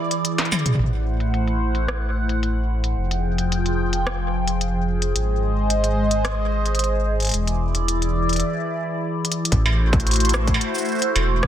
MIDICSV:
0, 0, Header, 1, 5, 480
1, 0, Start_track
1, 0, Tempo, 545455
1, 698, Time_signature, 4, 2, 24, 8
1, 10094, End_track
2, 0, Start_track
2, 0, Title_t, "Analog synth pad"
2, 0, Program_c, 0, 89
2, 0, Note_on_c, 0, 52, 85
2, 0, Note_on_c, 0, 64, 80
2, 0, Note_on_c, 0, 68, 80
2, 0, Note_on_c, 0, 74, 92
2, 663, Note_off_c, 0, 68, 0
2, 679, Note_off_c, 0, 52, 0
2, 679, Note_off_c, 0, 64, 0
2, 679, Note_off_c, 0, 74, 0
2, 698, Note_on_c, 0, 57, 79
2, 698, Note_on_c, 0, 64, 73
2, 699, Note_on_c, 0, 72, 75
2, 699, Note_on_c, 0, 78, 87
2, 2599, Note_off_c, 0, 57, 0
2, 2599, Note_off_c, 0, 64, 0
2, 2599, Note_off_c, 0, 72, 0
2, 2599, Note_off_c, 0, 78, 0
2, 2619, Note_on_c, 0, 53, 80
2, 2619, Note_on_c, 0, 79, 85
2, 2620, Note_on_c, 0, 65, 74
2, 2620, Note_on_c, 0, 68, 76
2, 4519, Note_off_c, 0, 53, 0
2, 4519, Note_off_c, 0, 79, 0
2, 4520, Note_off_c, 0, 65, 0
2, 4538, Note_on_c, 0, 56, 81
2, 4538, Note_on_c, 0, 72, 74
2, 4538, Note_on_c, 0, 75, 88
2, 6439, Note_off_c, 0, 56, 0
2, 6439, Note_off_c, 0, 72, 0
2, 6439, Note_off_c, 0, 75, 0
2, 6457, Note_on_c, 0, 52, 83
2, 6458, Note_on_c, 0, 64, 74
2, 6458, Note_on_c, 0, 74, 86
2, 8344, Note_off_c, 0, 68, 0
2, 8358, Note_off_c, 0, 52, 0
2, 8359, Note_off_c, 0, 64, 0
2, 8359, Note_off_c, 0, 74, 0
2, 8378, Note_on_c, 0, 57, 84
2, 8378, Note_on_c, 0, 64, 74
2, 8378, Note_on_c, 0, 66, 76
2, 8378, Note_on_c, 0, 72, 94
2, 10094, Note_off_c, 0, 57, 0
2, 10094, Note_off_c, 0, 64, 0
2, 10094, Note_off_c, 0, 66, 0
2, 10094, Note_off_c, 0, 72, 0
2, 10094, End_track
3, 0, Start_track
3, 0, Title_t, "Detuned saw bass"
3, 0, Program_c, 1, 39
3, 698, Note_on_c, 1, 33, 91
3, 2594, Note_off_c, 1, 33, 0
3, 2618, Note_on_c, 1, 29, 91
3, 4514, Note_off_c, 1, 29, 0
3, 4537, Note_on_c, 1, 32, 85
3, 6434, Note_off_c, 1, 32, 0
3, 6458, Note_on_c, 1, 28, 91
3, 7418, Note_off_c, 1, 28, 0
3, 8377, Note_on_c, 1, 33, 104
3, 9308, Note_off_c, 1, 33, 0
3, 9818, Note_on_c, 1, 28, 91
3, 10094, Note_off_c, 1, 28, 0
3, 10094, End_track
4, 0, Start_track
4, 0, Title_t, "Struck metal"
4, 458, Note_on_c, 9, 76, 82
4, 546, Note_off_c, 9, 76, 0
4, 8498, Note_on_c, 9, 76, 55
4, 8586, Note_off_c, 9, 76, 0
4, 9278, Note_on_c, 9, 76, 86
4, 9366, Note_off_c, 9, 76, 0
4, 9817, Note_on_c, 9, 76, 53
4, 9905, Note_off_c, 9, 76, 0
4, 10094, End_track
5, 0, Start_track
5, 0, Title_t, "Drums"
5, 98, Note_on_c, 9, 42, 54
5, 186, Note_off_c, 9, 42, 0
5, 218, Note_on_c, 9, 42, 66
5, 306, Note_off_c, 9, 42, 0
5, 338, Note_on_c, 9, 38, 51
5, 338, Note_on_c, 9, 42, 34
5, 398, Note_off_c, 9, 42, 0
5, 398, Note_on_c, 9, 42, 27
5, 426, Note_off_c, 9, 38, 0
5, 458, Note_off_c, 9, 42, 0
5, 458, Note_on_c, 9, 42, 23
5, 458, Note_on_c, 9, 47, 77
5, 458, Note_on_c, 9, 82, 82
5, 518, Note_off_c, 9, 42, 0
5, 518, Note_on_c, 9, 42, 20
5, 546, Note_off_c, 9, 47, 0
5, 546, Note_off_c, 9, 82, 0
5, 578, Note_off_c, 9, 42, 0
5, 578, Note_on_c, 9, 42, 54
5, 578, Note_on_c, 9, 45, 75
5, 659, Note_off_c, 9, 45, 0
5, 659, Note_on_c, 9, 45, 63
5, 666, Note_off_c, 9, 42, 0
5, 698, Note_on_c, 9, 42, 62
5, 738, Note_off_c, 9, 45, 0
5, 738, Note_on_c, 9, 45, 42
5, 786, Note_off_c, 9, 42, 0
5, 826, Note_off_c, 9, 45, 0
5, 1058, Note_on_c, 9, 42, 49
5, 1146, Note_off_c, 9, 42, 0
5, 1178, Note_on_c, 9, 42, 59
5, 1266, Note_off_c, 9, 42, 0
5, 1298, Note_on_c, 9, 42, 33
5, 1386, Note_off_c, 9, 42, 0
5, 1538, Note_on_c, 9, 42, 49
5, 1626, Note_off_c, 9, 42, 0
5, 1658, Note_on_c, 9, 37, 111
5, 1658, Note_on_c, 9, 42, 63
5, 1746, Note_off_c, 9, 37, 0
5, 1746, Note_off_c, 9, 42, 0
5, 2018, Note_on_c, 9, 42, 51
5, 2106, Note_off_c, 9, 42, 0
5, 2138, Note_on_c, 9, 42, 61
5, 2226, Note_off_c, 9, 42, 0
5, 2498, Note_on_c, 9, 42, 50
5, 2586, Note_off_c, 9, 42, 0
5, 2738, Note_on_c, 9, 42, 62
5, 2826, Note_off_c, 9, 42, 0
5, 2978, Note_on_c, 9, 42, 46
5, 3066, Note_off_c, 9, 42, 0
5, 3098, Note_on_c, 9, 42, 63
5, 3186, Note_off_c, 9, 42, 0
5, 3219, Note_on_c, 9, 42, 33
5, 3307, Note_off_c, 9, 42, 0
5, 3458, Note_on_c, 9, 42, 51
5, 3546, Note_off_c, 9, 42, 0
5, 3578, Note_on_c, 9, 37, 113
5, 3666, Note_off_c, 9, 37, 0
5, 3938, Note_on_c, 9, 42, 52
5, 4026, Note_off_c, 9, 42, 0
5, 4058, Note_on_c, 9, 42, 61
5, 4146, Note_off_c, 9, 42, 0
5, 4418, Note_on_c, 9, 42, 52
5, 4506, Note_off_c, 9, 42, 0
5, 4538, Note_on_c, 9, 42, 61
5, 4626, Note_off_c, 9, 42, 0
5, 5017, Note_on_c, 9, 42, 61
5, 5105, Note_off_c, 9, 42, 0
5, 5138, Note_on_c, 9, 42, 32
5, 5226, Note_off_c, 9, 42, 0
5, 5377, Note_on_c, 9, 42, 51
5, 5465, Note_off_c, 9, 42, 0
5, 5497, Note_on_c, 9, 37, 115
5, 5497, Note_on_c, 9, 42, 63
5, 5585, Note_off_c, 9, 37, 0
5, 5585, Note_off_c, 9, 42, 0
5, 5857, Note_on_c, 9, 42, 24
5, 5937, Note_off_c, 9, 42, 0
5, 5937, Note_on_c, 9, 42, 33
5, 5977, Note_off_c, 9, 42, 0
5, 5977, Note_on_c, 9, 42, 62
5, 6017, Note_off_c, 9, 42, 0
5, 6017, Note_on_c, 9, 42, 38
5, 6105, Note_off_c, 9, 42, 0
5, 6337, Note_on_c, 9, 42, 24
5, 6357, Note_off_c, 9, 42, 0
5, 6357, Note_on_c, 9, 42, 27
5, 6377, Note_off_c, 9, 42, 0
5, 6377, Note_on_c, 9, 42, 33
5, 6397, Note_off_c, 9, 42, 0
5, 6397, Note_on_c, 9, 42, 35
5, 6417, Note_off_c, 9, 42, 0
5, 6417, Note_on_c, 9, 42, 40
5, 6437, Note_off_c, 9, 42, 0
5, 6437, Note_on_c, 9, 42, 45
5, 6457, Note_off_c, 9, 42, 0
5, 6457, Note_on_c, 9, 42, 57
5, 6545, Note_off_c, 9, 42, 0
5, 6578, Note_on_c, 9, 42, 34
5, 6666, Note_off_c, 9, 42, 0
5, 6818, Note_on_c, 9, 42, 46
5, 6906, Note_off_c, 9, 42, 0
5, 6938, Note_on_c, 9, 42, 62
5, 7026, Note_off_c, 9, 42, 0
5, 7058, Note_on_c, 9, 42, 33
5, 7146, Note_off_c, 9, 42, 0
5, 7298, Note_on_c, 9, 42, 23
5, 7328, Note_off_c, 9, 42, 0
5, 7328, Note_on_c, 9, 42, 29
5, 7359, Note_off_c, 9, 42, 0
5, 7359, Note_on_c, 9, 42, 33
5, 7389, Note_off_c, 9, 42, 0
5, 7389, Note_on_c, 9, 42, 40
5, 7477, Note_off_c, 9, 42, 0
5, 8138, Note_on_c, 9, 42, 49
5, 8198, Note_off_c, 9, 42, 0
5, 8198, Note_on_c, 9, 42, 70
5, 8286, Note_off_c, 9, 42, 0
5, 8317, Note_on_c, 9, 42, 80
5, 8377, Note_off_c, 9, 42, 0
5, 8377, Note_on_c, 9, 42, 67
5, 8378, Note_on_c, 9, 36, 82
5, 8465, Note_off_c, 9, 42, 0
5, 8466, Note_off_c, 9, 36, 0
5, 8738, Note_on_c, 9, 36, 122
5, 8738, Note_on_c, 9, 42, 23
5, 8798, Note_off_c, 9, 42, 0
5, 8798, Note_on_c, 9, 42, 29
5, 8826, Note_off_c, 9, 36, 0
5, 8859, Note_off_c, 9, 42, 0
5, 8859, Note_on_c, 9, 42, 37
5, 8899, Note_off_c, 9, 42, 0
5, 8899, Note_on_c, 9, 42, 36
5, 8918, Note_off_c, 9, 42, 0
5, 8918, Note_on_c, 9, 42, 44
5, 8938, Note_off_c, 9, 42, 0
5, 8938, Note_on_c, 9, 42, 42
5, 8979, Note_off_c, 9, 42, 0
5, 8979, Note_on_c, 9, 42, 46
5, 9019, Note_off_c, 9, 42, 0
5, 9019, Note_on_c, 9, 42, 51
5, 9058, Note_off_c, 9, 42, 0
5, 9058, Note_on_c, 9, 42, 57
5, 9099, Note_on_c, 9, 37, 119
5, 9099, Note_on_c, 9, 82, 80
5, 9146, Note_off_c, 9, 42, 0
5, 9187, Note_off_c, 9, 37, 0
5, 9187, Note_off_c, 9, 82, 0
5, 9218, Note_on_c, 9, 36, 105
5, 9218, Note_on_c, 9, 42, 55
5, 9306, Note_off_c, 9, 36, 0
5, 9306, Note_off_c, 9, 42, 0
5, 9338, Note_on_c, 9, 42, 70
5, 9426, Note_off_c, 9, 42, 0
5, 9458, Note_on_c, 9, 82, 59
5, 9488, Note_off_c, 9, 82, 0
5, 9488, Note_on_c, 9, 82, 51
5, 9517, Note_off_c, 9, 82, 0
5, 9517, Note_on_c, 9, 82, 40
5, 9547, Note_off_c, 9, 82, 0
5, 9547, Note_on_c, 9, 82, 32
5, 9578, Note_off_c, 9, 82, 0
5, 9578, Note_on_c, 9, 82, 27
5, 9607, Note_off_c, 9, 82, 0
5, 9607, Note_on_c, 9, 82, 22
5, 9637, Note_off_c, 9, 82, 0
5, 9637, Note_on_c, 9, 82, 19
5, 9668, Note_off_c, 9, 82, 0
5, 9668, Note_on_c, 9, 82, 15
5, 9697, Note_on_c, 9, 42, 58
5, 9756, Note_off_c, 9, 82, 0
5, 9785, Note_off_c, 9, 42, 0
5, 9817, Note_on_c, 9, 42, 66
5, 9905, Note_off_c, 9, 42, 0
5, 10057, Note_on_c, 9, 37, 117
5, 10058, Note_on_c, 9, 36, 88
5, 10094, Note_off_c, 9, 36, 0
5, 10094, Note_off_c, 9, 37, 0
5, 10094, End_track
0, 0, End_of_file